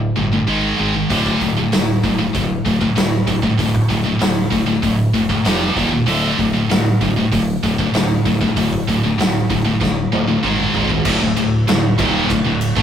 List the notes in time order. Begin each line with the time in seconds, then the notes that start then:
Already playing: D2 A2
0.16 G1 D2 A2
0.32 D2 A2
0.47 G#1 G#2 D#3 G#3
0.78 G#1 G#2 D#3 G#3
0.94 G#2 D#3
1.10 D1 D2 A2 D3, kick, open hi-hat
1.26 kick
1.41 D1 D2 A2, kick, open hi-hat
1.57 D2 A2
1.72 D1 D2 A2, snare, open hi-hat
2.03 D1 D2 A2, kick, open hi-hat
2.18 D2 A2
2.33 D1 D2 A2, kick, open hi-hat
2.65 D1 D2 A2, kick, open hi-hat
2.80 D2 A2, kick
2.95 D1 D2 A2, snare, open hi-hat
3.27 D1 D2 A2, kick, open hi-hat
3.43 D2 A2, kick
3.59 D1 D2 A2, kick, open hi-hat
3.75 kick
3.90 D1 D2 A2, kick, open hi-hat
4.05 D2 A2
4.21 D1 D2 A2, snare, open hi-hat
4.51 D1 D2 A2, kick, open hi-hat
4.67 D2 A2
4.82 D1 D2 A2, kick, open hi-hat
5.13 E1 D2 A2, kick, open hi-hat
5.29 D2 A2, kick
5.45 F1 F2 C3 F3, snare, open hi-hat
5.75 D#1 D#2 A#2 D#3, kick, open hi-hat
5.91 D#2 A#2
6.06 D1 D2 A2 D3, open hi-hat
6.37 D1 D2 A2, kick, open hi-hat
6.53 D2 A2
6.70 D1 D2 A2, snare, open hi-hat
7.01 D1 D2 A2, kick, open hi-hat
7.17 D2 A2
7.32 D1 D2 A2, kick, open hi-hat
7.63 D1 D2 A2, kick, open hi-hat
7.79 D2 A2, kick
7.94 D1 D2 A2, snare, open hi-hat
8.25 D1 D2 A2, kick, open hi-hat
8.41 D2 A2, kick
8.57 D1 D2 A2, kick, open hi-hat
8.73 kick
8.88 D1 D2 A2, kick, open hi-hat
9.04 D2 A2
9.18 D1 D2 A2, snare, open hi-hat
9.50 D1 D2 A2, kick, open hi-hat
9.65 D2 A2
9.81 D1 D2 A2, kick, snare
10.12 D1 D2 A2, high tom
10.27 D2 A2
10.43 G#1 G#2 D#3 G#3, mid tom
10.59 mid tom
10.74 G#1 G#2 D#3 G#3, floor tom
10.89 G#2 D#3, floor tom
11.05 D1 D2 A2, kick, crash
11.21 D1 D2 A2
11.37 D1 D2 A2, ride
11.68 D1 D2 A2, snare, ride
11.99 D#1 D#2 A#2 D#3, kick, ride
12.30 D1 D2 A2, kick, ride
12.44 D1 D2 A2
12.61 ride
12.77 A1 A2 E3 A3, kick